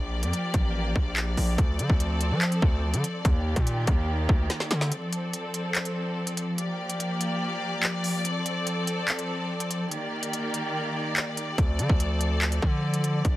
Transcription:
Already playing: 808-style bass A#1, string section F3 A#3 G4 D5
0.23 808-style bass F2, closed hi-hat
0.33 closed hi-hat
0.54 808-style bass A1, kick, closed hi-hat
0.96 808-style bass A#1, kick
1.16 clap, closed hi-hat
1.37 808-style bass A#1, open hi-hat
1.58 808-style bass D2, string section C4 A4, kick, closed hi-hat
1.79 808-style bass D3, closed hi-hat
1.90 808-style bass D2, kick
2.00 closed hi-hat
2.21 closed hi-hat
2.31 808-style bass F3
2.42 clap, closed hi-hat
2.52 closed hi-hat
2.62 808-style bass D2, kick
2.94 808-style bass D3, closed hi-hat
3.04 closed hi-hat
3.25 808-style bass D#2, string section D#3 A#3 G4, kick, closed hi-hat
3.56 808-style bass A#2, kick, closed hi-hat
3.67 closed hi-hat
3.87 808-style bass D#2, kick, closed hi-hat
4.29 808-style bass D2, kick
4.50 snare, closed hi-hat
4.60 snare
4.71 808-style bass D3, snare, closed hi-hat
4.81 snare
4.92 string section F3 C4 A4, closed hi-hat
5.13 closed hi-hat
5.33 closed hi-hat
5.54 closed hi-hat
5.75 clap, closed hi-hat
5.85 closed hi-hat
6.27 closed hi-hat
6.37 closed hi-hat
6.58 string section A#3 G4 D5, closed hi-hat
6.89 closed hi-hat
7.00 closed hi-hat
7.21 closed hi-hat
7.83 clap, closed hi-hat
8.04 open hi-hat
8.25 string section C4 A4, closed hi-hat
8.46 closed hi-hat
8.67 closed hi-hat
8.87 closed hi-hat
9.08 clap, closed hi-hat
9.19 closed hi-hat
9.60 closed hi-hat
9.71 closed hi-hat
9.92 string section D#3 A#3 G4 D5, closed hi-hat
10.23 closed hi-hat
10.33 closed hi-hat
10.54 closed hi-hat
11.16 clap, closed hi-hat
11.37 closed hi-hat
11.58 808-style bass D2, string section F3 C4 A4, kick, closed hi-hat
11.79 808-style bass D3, closed hi-hat
11.90 808-style bass D2, kick
12.00 closed hi-hat
12.21 closed hi-hat
12.42 clap, closed hi-hat
12.52 closed hi-hat
12.62 808-style bass D3, kick
12.94 closed hi-hat
13.04 closed hi-hat
13.25 808-style bass A#1, string section A#3 G4, kick, closed hi-hat

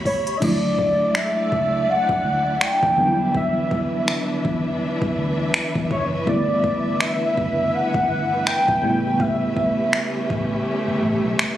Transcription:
Already playing: string section G4 C#5 E5 B5
0.05 soft synth lead C#5, kick, open hi-hat
0.27 closed hi-hat
0.37 tine electric piano D4, soft synth lead E5
0.41 fingered electric bass D2, tine electric piano F3 A3 E4, string section A3 D4 E4 D5 E5, soft synth lead D5, kick, crash
0.48 tine electric piano F#3
0.79 kick
1.15 soft synth lead E5, finger snap
1.52 fingered electric bass C#2, kick
1.90 soft synth lead F#5
2.09 kick
2.25 fingered electric bass D2
2.61 soft synth lead G5, finger snap
2.83 fingered electric bass E2, kick
2.96 fingered electric bass E2, tine electric piano D3 F#3 G3 B3 D4, string section E3 B4
3.06 tine electric piano E4
3.35 soft synth lead E5, kick
3.71 kick
4.08 finger snap
4.45 fingered electric bass E2, kick
5.02 kick
5.18 fingered electric bass D2
5.54 finger snap
5.75 fingered electric bass E2, kick
5.91 fingered electric bass F#1, soft synth lead C#5, kick
6.26 fingered electric bass G1, tine electric piano D3 G3 A3 B3 E4, string section E4, soft synth lead D5, kick
6.64 kick
7.00 soft synth lead E5, finger snap
7.37 fingered electric bass F#1, kick
7.74 soft synth lead F#5
7.94 kick
8.10 fingered electric bass G1
8.47 soft synth lead G5, finger snap
8.68 fingered electric bass B1, kick
8.82 fingered electric bass A1, tine electric piano C#3 G3 A3 B3 E4, string section A3 C#4 G4
9.20 soft synth lead E5, kick
9.57 kick
9.93 finger snap
10.30 fingered electric bass A1, kick
10.88 fingered electric bass G1
11.03 fingered electric bass A1
11.24 fingered electric bass B1
11.39 finger snap

